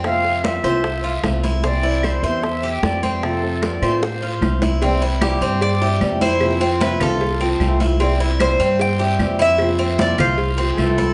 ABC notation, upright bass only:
X:1
M:4/4
L:1/8
Q:1/4=151
K:C
V:1 name="Upright bass" clef=bass
F,,3 C,,3 C,,2- | C,,3 E,,3 F,,2- | F,,3 A,,3 C,,2- | C,,3 G,,3 F,,2- |
F,,3 C,,3 C,,2- | C,,3 G,,3 F,,2- | F,,3 C,,3 C,,2 |]